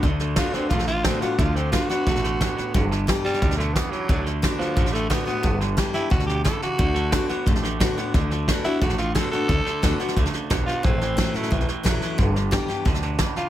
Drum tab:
HH |----p-------p---|----p-------p---|----p-------p---|----p-------p---|
SD |o-o-o-o-ooo-o-o-|o-o-o-o-ooo-o-o-|o-o-o-ooooo-o-o-|o-o-o-o-ooo-o-o-|
BD |o---o---o---o---|o---o---o---o---|o---o---o---o---|o---o---o---o---|

HH |----p-------p---|----p-------p---|----p-------p---|----p-------p---|
SD |o-o-o-o-ooo-o-o-|o-o-o-o-ooo-o-o-|o-o-o-o-ooo-o-o-|o-o-o-ooooo-o-o-|
BD |o---o---o---o---|o---o---o---o---|o---o---o---o---|o---o---o---o---|

HH |----p-------p---|----p-------p---|
SD |o-o-o-ooooo-o-o-|o-o-o-o-ooo-o-o-|
BD |o---o---o---o---|o---o---o---o---|